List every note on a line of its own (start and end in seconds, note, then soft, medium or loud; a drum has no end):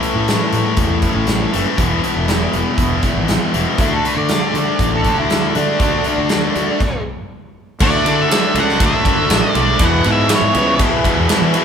0.00 0.26 A2 medium
0.00 0.27 E3 medium
0.00 1.52 A3 medium
0.00 0.27 A3 medium
0.00 0.27 C#4 medium
0.00 0.29 E4 medium
0.00 closed hi-hat soft
0.15 0.34 A2 medium
0.27 0.77 A2 medium
0.27 1.27 E3 medium
0.27 0.53 A3 medium
0.27 0.52 C#4 loud
0.27 0.53 E4 medium
0.27 snare medium
0.27 closed hi-hat medium
0.52 0.62 A2 medium
0.52 1.04 A3 medium
0.52 1.02 C#4 medium
0.52 1.01 E4 medium
0.52 closed hi-hat medium
0.77 1.06 E2 medium
0.77 kick medium
0.77 closed hi-hat medium
1.02 1.27 A3 medium
1.02 1.28 C#4 medium
1.02 1.28 E4 medium
1.02 kick medium
1.02 closed hi-hat medium
1.15 1.44 A1 medium
1.27 1.75 E3 medium
1.27 1.77 A3 medium
1.27 1.77 C#4 medium
1.27 1.77 E4 medium
1.27 snare medium
1.27 closed hi-hat medium
1.53 1.63 F#1 medium
1.53 1.78 A2 medium
1.53 1.77 E3 medium
1.53 1.77 A3 medium
1.53 closed hi-hat medium
1.77 1.98 E1 medium
1.77 3.52 E2 medium
1.77 3.53 B2 medium
1.77 2.27 E3 medium
1.77 2.04 G#3 medium
1.77 2.03 B3 medium
1.77 2.03 E4 medium
1.77 kick medium
1.77 closed hi-hat medium
2.04 2.28 G#3 soft
2.04 2.28 B3 medium
2.04 2.29 E4 medium
2.04 closed hi-hat medium
2.16 2.45 E1 medium
2.28 2.79 E3 medium
2.28 2.54 G#3 medium
2.28 2.53 B3 medium
2.28 2.52 E4 medium
2.28 snare loud
2.28 closed hi-hat medium
2.53 2.63 E1 medium
2.53 3.04 G#3 medium
2.53 3.04 B3 medium
2.53 3.03 E4 medium
2.53 closed hi-hat medium
2.78 2.98 E1 medium
2.78 kick medium
2.78 closed hi-hat medium
3.02 3.29 G#3 medium
3.02 3.29 B3 medium
3.02 3.30 E4 medium
3.02 kick medium
3.02 closed hi-hat medium
3.16 3.35 G#1 medium
3.28 3.78 E3 medium
3.28 3.78 G#3 medium
3.28 3.78 B3 medium
3.28 3.78 E4 medium
3.28 snare loud
3.28 closed hi-hat medium
3.54 3.64 E1 medium
3.54 3.79 E2 medium
3.54 3.78 B2 medium
3.54 3.78 E3 medium
3.54 closed hi-hat medium
3.78 3.98 D2 medium
3.78 4.28 D3 medium
3.78 4.06 A3 medium
3.78 4.05 D4 medium
3.78 3.92 E4 medium
3.78 4.04 F#4 medium
3.78 kick loud
3.78 closed hi-hat medium
3.94 4.05 A4 medium
4.04 4.30 A3 medium
4.04 4.30 D4 medium
4.04 4.31 F#4 medium
4.04 4.18 B4 medium
4.04 closed hi-hat medium
4.17 4.36 D3 medium
4.17 4.90 D5 medium
4.29 5.30 D3 medium
4.29 4.57 A3 medium
4.29 4.56 D4 medium
4.29 4.55 F#4 medium
4.29 snare loud
4.29 closed hi-hat medium
4.54 4.64 D3 medium
4.54 5.05 D4 medium
4.54 5.05 F#4 medium
4.54 closed hi-hat medium
4.58 5.06 A3 medium
4.79 5.08 A1 medium
4.79 kick medium
4.79 closed hi-hat medium
4.95 5.18 A4 medium
5.04 5.30 A3 soft
5.04 5.31 D4 medium
5.04 5.31 F#4 medium
5.04 kick medium
5.04 closed hi-hat medium
5.18 5.47 D2 medium
5.18 5.54 E4 medium
5.30 5.79 D3 medium
5.30 5.80 A3 medium
5.30 5.81 D4 medium
5.30 5.82 F#4 medium
5.30 snare medium
5.30 closed hi-hat medium
5.55 5.65 D3 medium
5.55 5.78 D3 medium
5.55 5.79 A3 medium
5.55 5.79 D4 medium
5.55 7.02 D4 medium
5.55 closed hi-hat medium
5.79 5.99 D2 medium
5.79 6.29 D3 medium
5.79 6.06 A3 medium
5.79 6.05 D4 medium
5.79 6.04 F#4 medium
5.79 kick loud
5.79 closed hi-hat medium
6.04 6.29 A3 soft
6.04 6.30 D4 medium
6.04 6.31 F#4 medium
6.04 closed hi-hat medium
6.18 6.47 D2 medium
6.29 6.79 D3 medium
6.29 6.56 A3 medium
6.29 6.54 D4 medium
6.29 6.54 F#4 loud
6.29 snare loud
6.29 closed hi-hat medium
6.55 6.65 D2 medium
6.55 6.80 A3 soft
6.55 6.79 D4 medium
6.55 6.78 F#4 medium
6.55 closed hi-hat medium
6.80 kick medium
6.80 crash medium
7.79 7.90 D2 medium
7.79 8.05 D3 medium
7.79 8.04 D3 medium
7.79 8.05 F#3 medium
7.79 8.05 A3 medium
7.79 8.06 A3 medium
7.79 8.03 D4 medium
7.79 8.06 D4 loud
7.79 9.78 E4 medium
7.79 8.03 E4 medium
7.79 9.78 F#4 medium
7.79 9.78 D5 medium
7.79 8.20 D5 medium
7.79 kick loud
7.79 crash loud
8.04 8.24 D3 medium
8.04 8.28 D3 medium
8.04 8.29 A3 medium
8.04 8.30 D4 medium
8.04 8.29 E4 medium
8.04 ride medium
8.22 8.58 E5 medium
8.29 8.53 D3 medium
8.29 8.55 F#3 medium
8.29 8.53 A3 medium
8.29 8.55 A3 medium
8.29 8.54 D4 loud
8.29 8.54 D4 medium
8.29 8.52 E4 medium
8.29 snare loud
8.29 ride medium
8.54 8.74 C#2 medium
8.54 8.79 D3 medium
8.54 8.80 A3 medium
8.54 8.80 A3 soft
8.54 8.80 D4 loud
8.54 8.80 D4 soft
8.54 8.79 E4 medium
8.54 ride medium
8.60 8.83 F#5 medium
8.69 snare soft
8.80 8.90 D2 medium
8.80 9.04 D3 medium
8.80 9.05 D3 medium
8.80 9.05 F#3 medium
8.80 9.04 A3 medium
8.80 9.06 A3 medium
8.80 9.05 D4 medium
8.80 9.06 D4 medium
8.80 9.05 E4 medium
8.80 kick loud
8.80 ride medium
8.86 9.34 E5 loud
9.05 9.15 C#2 medium
9.05 9.29 D3 medium
9.05 9.30 A3 loud
9.05 9.30 D4 medium
9.05 9.31 D4 medium
9.05 9.31 E4 medium
9.05 kick medium
9.05 ride medium
9.09 9.32 A3 soft
9.17 9.27 D2 medium
9.30 9.40 A1 medium
9.30 9.53 D3 medium
9.30 9.56 F#3 medium
9.30 9.53 A3 medium
9.30 9.56 A3 medium
9.30 9.53 D4 medium
9.30 snare loud
9.30 ride medium
9.34 9.57 D4 medium
9.34 9.57 E4 medium
9.34 9.85 D5 medium
9.54 9.74 B1 medium
9.54 9.78 D3 medium
9.54 9.78 A3 medium
9.54 9.78 D4 medium
9.54 ride medium
9.58 9.83 A3 soft
9.58 9.82 D4 medium
9.58 9.82 E4 medium
9.78 10.04 E2 medium
9.78 9.99 E2 medium
9.78 10.06 E2 medium
9.78 10.04 B2 medium
9.78 10.05 E3 medium
9.78 11.65 E4 medium
9.78 11.65 G#4 medium
9.78 11.65 B4 medium
9.78 kick loud
9.78 ride medium
9.83 10.06 B2 medium
9.83 10.06 E3 medium
9.83 10.07 G#3 medium
9.83 10.07 B3 medium
9.83 10.05 E4 medium
9.83 10.08 F#5 loud
10.04 10.29 E2 medium
10.04 10.34 G#2 medium
10.04 10.28 B2 medium
10.04 10.30 E3 loud
10.04 10.30 G#3 soft
10.04 10.29 B3 soft
10.04 10.31 E4 medium
10.04 ride medium
10.09 10.28 E3 soft
10.09 10.34 E5 medium
10.29 10.54 E2 medium
10.29 10.54 B2 medium
10.29 10.54 E3 medium
10.29 10.55 E3 medium
10.29 10.55 G#3 medium
10.29 10.55 B3 medium
10.29 10.55 E4 medium
10.29 snare loud
10.29 ride loud
10.34 10.79 C#5 medium
10.41 10.51 G#2 medium
10.55 10.74 C#2 medium
10.55 10.78 E2 loud
10.55 10.78 B2 loud
10.55 10.79 E3 loud
10.55 10.79 E3 soft
10.55 10.79 G#3 medium
10.55 10.79 B3 medium
10.55 10.79 E4 medium
10.55 ride medium
10.79 11.04 E2 medium
10.79 11.05 E2 medium
10.79 11.03 B2 medium
10.79 11.05 B2 medium
10.79 11.04 E3 medium
10.79 11.05 E3 medium
10.79 11.05 G#3 medium
10.79 11.05 B3 medium
10.79 11.05 E4 medium
10.79 kick loud
10.79 ride loud
11.04 11.28 E2 loud
11.04 11.28 B2 loud
11.04 11.28 E3 loud
11.04 11.29 G#3 soft
11.04 11.31 B3 medium
11.04 11.30 E4 medium
11.04 kick medium
11.04 ride medium
11.08 11.29 E3 soft
11.17 11.27 E2 medium
11.28 11.53 E2 medium
11.28 11.52 B2 medium
11.28 11.53 E3 medium
11.28 11.54 E3 medium
11.28 11.54 G#3 medium
11.28 11.53 B3 medium
11.28 snare medium
11.28 ride medium
11.32 11.52 E4 medium
11.42 11.51 E3 medium
11.53 11.65 E2 medium
11.53 11.65 B2 medium
11.53 11.65 E3 medium
11.53 11.65 G#3 medium
11.53 11.65 B3 medium
11.53 11.65 E4 medium
11.53 ride medium